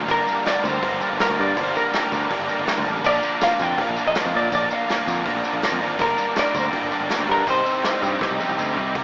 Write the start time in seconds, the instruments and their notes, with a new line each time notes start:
Already playing: distorted electric guitar D4, tonewheel organ D5 D6
0.07 picked electric bass G1, overdriven electric guitar G2 D3 G3 A#3 D4 A#4, tonewheel organ A#4 G5, kick, open hi-hat, tambourine
0.11 clean electric guitar A#4
0.25 overdriven electric guitar G2 D3 G3 A#3 D4 A#4, tambourine
0.44 overdriven electric guitar G2 D3 G3 A#3 D4 A#4, clean electric guitar D5, snare, open hi-hat, tambourine
0.63 picked electric bass D2, overdriven electric guitar G2 D3 G3 A#3 D4 A#4, clean electric guitar C5, kick, tambourine
0.82 overdriven electric guitar G2 D3 G3 A#3 D4 A#4, kick, open hi-hat
0.92 picked electric bass G1
1.00 overdriven electric guitar G2 D3 G3 A#3 D4 A#4, tambourine
1.11 picked electric bass G1
1.19 overdriven electric guitar G2 D3 G3 A#3 D4 A#4, clean electric guitar A#4, snare, open hi-hat, tambourine
1.30 picked electric bass D2
1.36 overdriven electric guitar G2 D3 G3 A#3 D4 A#4, picked electric bass G2, tambourine
1.41 clean electric guitar D5
1.55 picked electric bass G1, overdriven electric guitar G2 D3 G3 A#3 D4 A#4, kick, open hi-hat, tambourine
1.59 clean electric guitar C5
1.66 tambourine
1.73 overdriven electric guitar G2 D3 G3 A#3 D4 A#4, clean electric guitar A#4, tambourine
1.85 tambourine
1.92 overdriven electric guitar G2 D3 G3 A#3 D4 A#4, snare, open hi-hat, tambourine
2.03 tambourine
2.11 picked electric bass D2, overdriven electric guitar G2 D3 G3 A#3 D4 A#4, kick, tambourine
2.22 tambourine
2.29 overdriven electric guitar G2 D3 G3 A#3 D4 A#4, kick, open hi-hat
2.40 picked electric bass G1, tambourine
2.47 overdriven electric guitar G2 D3 G3 A#3 D4 A#4, tambourine
2.59 picked electric bass G1, tambourine
2.66 overdriven electric guitar G2 D3 G3 A#3 D4 A#4, snare, open hi-hat, tambourine
2.78 picked electric bass D2
2.85 picked electric bass A1, overdriven electric guitar G2 D3 G3 A#3 D4 A#4, tambourine
2.95 tambourine
3.03 picked electric bass A#1, overdriven electric guitar A#2 D3 F3 A#3 D4 A#4, clean electric guitar D5, tonewheel organ F5, kick, tambourine, crash
3.22 overdriven electric guitar A#2 D3 F3 A#3 D4 A#4, tambourine
3.41 overdriven electric guitar A#2 D3 F3 A#3 D4 A#4, clean electric guitar F5, snare, open hi-hat, tambourine
3.59 picked electric bass F2, overdriven electric guitar A#2 D3 F3 A#3 D4 A#4, clean electric guitar G5, kick, tambourine
3.78 overdriven electric guitar A#2 D3 F3 A#3 D4 A#4, clean electric guitar F5, kick, open hi-hat
3.89 picked electric bass A#1
3.96 overdriven electric guitar A#2 D3 F3 A#3 D4 A#4, tambourine
4.07 picked electric bass A#1, clean electric guitar D#5
4.14 overdriven electric guitar A#2 D3 F3 A#3 D4 A#4, snare, open hi-hat, tambourine
4.25 picked electric bass F2
4.33 overdriven electric guitar A#2 D3 F3 A#3 D4 A#4, picked electric bass A#2, clean electric guitar D5, tambourine
4.50 picked electric bass A#1, overdriven electric guitar A#2 D3 F3 A#3 D4 A#4, kick, open hi-hat, tambourine
4.55 clean electric guitar D5
4.70 overdriven electric guitar A#2 D3 F3 A#3 D4 A#4, clean electric guitar F5, tambourine
4.89 overdriven electric guitar A#2 D3 F3 A#3 D4 A#4, snare, open hi-hat, tambourine
5.07 picked electric bass F2, overdriven electric guitar A#2 D3 F3 A#3 D4 A#4, kick, tambourine
5.25 overdriven electric guitar A#2 D3 F3 A#3 D4 A#4, kick, open hi-hat
5.35 picked electric bass A#1
5.43 overdriven electric guitar A#2 D3 F3 A#3 D4 A#4, tambourine
5.53 picked electric bass A#1
5.62 overdriven electric guitar A#2 D3 F3 A#3 D4 A#4, snare, open hi-hat, tambourine
5.72 picked electric bass F2, tambourine
5.80 picked electric bass G#1, overdriven electric guitar A#2 D3 F3 A#3 D4 A#4, tambourine
5.98 picked electric bass G1, overdriven electric guitar G2 D3 G3 A#3 D4 A#4, clean electric guitar A#4, tonewheel organ D5 G5 D6, kick, open hi-hat, tambourine
6.17 overdriven electric guitar G2 D3 G3 A#3 D4 A#4, tambourine
6.36 overdriven electric guitar G2 D3 G3 A#3 D4 A#4, clean electric guitar D5, snare, open hi-hat, tambourine
6.54 picked electric bass D2, overdriven electric guitar G2 D3 G3 A#3 D4 A#4, clean electric guitar C5, kick, tambourine
6.66 clean electric guitar D5
6.72 overdriven electric guitar G2 D3 G3 A#3 D4 A#4, kick, open hi-hat
6.83 picked electric bass G1
6.91 overdriven electric guitar G2 D3 G3 A#3 D4 A#4, tambourine
7.01 picked electric bass G1
7.09 overdriven electric guitar G2 D3 G3 A#3 D4 A#4, snare, open hi-hat, tambourine
7.19 picked electric bass D2, tambourine
7.28 overdriven electric guitar G2 D3 G3 A#3 D4 A#4, picked electric bass G2, clean electric guitar A#4, tambourine
7.46 picked electric bass C2, overdriven electric guitar C3 G3 C4 D#4 G4, tonewheel organ C5 D#5 G5, kick, open hi-hat, tambourine
7.50 clean electric guitar C5
7.65 overdriven electric guitar C3 G3 C4 D#4 G4, tambourine
7.76 tambourine
7.83 overdriven electric guitar C3 G3 C4 D#4 G4, snare, open hi-hat, tambourine
8.01 picked electric bass G2, overdriven electric guitar C3 G3 C4 D#4 G4, kick, tambourine
8.21 overdriven electric guitar C3 G3 C4 D#4 G4, kick, snare
8.31 picked electric bass C2
8.38 overdriven electric guitar C3 G3 C4 D#4 G4, high tom, tambourine
8.49 picked electric bass C2, tambourine
8.58 picked electric bass D2, overdriven electric guitar C3 G3 C4 D#4 G4, mid tom, tambourine
8.69 tambourine
8.76 picked electric bass C2, overdriven electric guitar C3 G3 C4 D#4 G4, floor tom
8.95 picked electric bass C2, overdriven electric guitar C3 D#3 G3, kick, open hi-hat